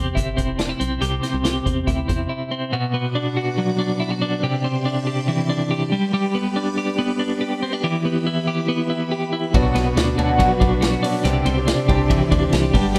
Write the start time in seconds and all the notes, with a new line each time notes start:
Already playing: E2 C3 C4 G4
0.15 G1 E4, kick, closed hi-hat
0.37 E1 C4, kick, closed hi-hat
0.59 D4, snare, closed hi-hat
0.69 E4
0.80 B1 C4, closed hi-hat
1.01 C2 C3 G4, closed hi-hat
1.23 C4, snare, closed hi-hat
1.34 C2
1.44 G4, snare, closed hi-hat
1.66 E2 C4, kick, closed hi-hat
1.87 D2 E4, kick, closed hi-hat
2.08 E2 C4, kick, closed hi-hat
2.29 E4
2.51 C4
2.72 B2 F#4 B4 D5 F#5 D6
2.94 B3
3.15 D4
3.37 F#4
3.58 F#3
3.79 D4
4.00 E4
4.11 F#4
4.22 D4
4.43 C3 G4 D5 E5 C6
4.64 C4
4.85 D4
5.07 G4
5.28 E3
5.49 D4
5.71 G4
5.92 G3 G4 B4 D5 B5
6.13 G3 G4
6.35 B3
6.56 D4
6.78 G4
6.99 B3
7.19 D4
7.41 G4
7.63 C4
7.73 D4
7.84 E3 G4 B4 E5
8.05 B3
8.27 E4
8.47 G4
8.68 B3
8.90 E4
9.12 G4
9.33 E4
9.54 B1 B2 F#3 B3 D4 F#4 D5, kick, ride
9.75 B1 B3, snare, ride
9.85 B3 D4 F#4
9.97 D2 D4, snare, ride
10.17 D2 B2 F#3 B3 D4 F#4, ride
10.39 F#3, kick, ride
10.52 B3
10.60 B1 D4, kick, ride
10.71 B3 D4 F#4
10.81 F#4, snare, ride
11.03 F#3 B3 D4 F#4, open hi-hat, ride
11.24 C2 C3 E3 C4 D4 G4 E5 C6, hi-hat pedal, ride
11.46 C2 C4, ride
11.57 C4 D4 G4
11.67 D4, snare, ride
11.88 C2 C3 E3 C4 D4 G4, kick, ride
12.10 E3, kick, ride
12.20 C4 D4 G4
12.31 D2 D4, kick, ride
12.41 C4 D4 G4
12.53 C2 G4, snare, ride
12.73 G1 G3 B3 D4 G4 B4 B5, kick, open hi-hat, ride
12.94 G3 B3 D4 G4, hi-hat pedal, ride